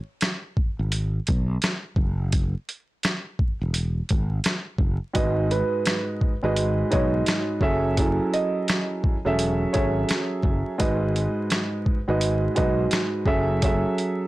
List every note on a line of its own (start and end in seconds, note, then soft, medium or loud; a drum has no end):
0.21 cross-stick medium
0.21 snare loud
0.21 closed hi-hat medium
0.57 kick loud
0.79 1.18 G#1 medium
0.92 closed hi-hat medium
1.27 1.56 B1 loud
1.27 kick medium
1.27 closed hi-hat medium
1.62 cross-stick medium
1.62 snare loud
1.62 closed hi-hat medium
1.96 2.54 F#1 medium
1.96 kick medium
2.32 kick loud
2.32 closed hi-hat medium
2.69 closed hi-hat soft
3.03 cross-stick loud
3.03 snare loud
3.03 closed hi-hat medium
3.39 kick medium
3.61 4.00 E1 medium
3.74 closed hi-hat medium
4.09 4.39 G#1 loud
4.09 kick medium
4.09 closed hi-hat soft
4.44 cross-stick medium
4.44 snare loud
4.44 closed hi-hat medium
4.78 4.97 F#1 medium
4.78 kick medium
5.13 5.62 G#1 loud
5.13 6.30 G#2 medium
5.13 6.30 G#3 medium
5.13 6.31 F#4 medium
5.13 6.31 B4 medium
5.13 6.31 D#5 loud
5.13 kick loud
5.13 closed hi-hat medium
5.51 6.05 B4 medium
5.51 closed hi-hat soft
5.86 cross-stick loud
5.86 snare loud
5.86 closed hi-hat medium
6.21 kick medium
6.43 6.83 G#1 medium
6.43 6.88 G#2 medium
6.43 6.89 G#3 medium
6.43 6.89 F#4 medium
6.43 6.89 B4 medium
6.43 6.89 D#5 loud
6.56 closed hi-hat medium
6.91 7.21 B1 loud
6.91 7.58 G#2 loud
6.91 7.58 G#3 medium
6.91 7.58 F#4 medium
6.91 7.58 B4 medium
6.91 7.12 C#5 medium
6.91 7.59 D#5 loud
6.91 kick medium
6.91 closed hi-hat medium
7.26 cross-stick medium
7.26 snare loud
7.26 closed hi-hat medium
7.61 8.18 F#1 medium
7.61 7.95 F#3 medium
7.61 7.95 C#4 medium
7.61 7.95 G#4 medium
7.61 7.96 A4 medium
7.61 7.96 E5 loud
7.61 kick loud
7.97 9.13 F#3 medium
7.97 9.14 C#4 medium
7.97 9.14 E4 loud
7.97 9.14 G#4 medium
7.97 9.14 A4 medium
7.97 kick loud
7.97 closed hi-hat medium
8.33 8.87 D#5 medium
8.33 closed hi-hat soft
8.68 cross-stick loud
8.68 snare loud
8.68 closed hi-hat medium
9.04 kick loud
9.25 9.65 E1 medium
9.25 9.71 F#3 medium
9.25 9.71 C#4 medium
9.25 9.71 G#4 medium
9.25 9.71 A4 medium
9.25 9.72 E5 loud
9.39 closed hi-hat medium
9.73 10.04 G#1 loud
9.73 10.73 F#3 medium
9.73 10.73 C#4 medium
9.73 10.74 G#4 medium
9.73 10.74 A4 medium
9.73 9.93 C#5 medium
9.73 10.74 E5 medium
9.73 kick medium
9.73 closed hi-hat soft
10.09 cross-stick medium
10.09 snare loud
10.09 closed hi-hat medium
10.43 10.62 F#1 medium
10.43 kick medium
10.78 11.26 G#1 loud
10.78 11.95 G#2 loud
10.78 11.95 G#3 medium
10.78 11.95 F#4 medium
10.78 11.96 B4 medium
10.78 11.96 D#5 loud
10.78 kick loud
10.78 closed hi-hat medium
11.16 closed hi-hat soft
11.50 cross-stick medium
11.50 snare loud
11.50 closed hi-hat medium
11.86 kick medium
12.08 12.47 G#1 medium
12.08 12.53 G#2 medium
12.08 12.53 G#3 medium
12.08 12.54 F#4 medium
12.08 12.54 B4 medium
12.08 12.54 D#5 loud
12.21 closed hi-hat medium
12.55 12.86 B1 medium
12.55 13.22 G#2 loud
12.55 13.23 G#3 medium
12.55 13.23 F#4 medium
12.55 13.23 B4 medium
12.55 13.23 D#5 loud
12.55 kick medium
12.55 closed hi-hat soft
12.91 cross-stick medium
12.91 snare loud
12.91 closed hi-hat medium
13.25 13.83 F#1 loud
13.25 13.59 F#3 medium
13.25 13.60 C#4 medium
13.25 13.60 G#4 medium
13.25 13.60 A4 medium
13.25 13.61 E5 loud
13.25 kick medium
13.62 14.28 F#3 loud
13.62 14.28 C#4 medium
13.62 14.28 G#4 medium
13.62 14.28 A4 medium
13.62 14.28 E5 loud
13.62 kick loud
13.62 closed hi-hat medium
13.98 closed hi-hat soft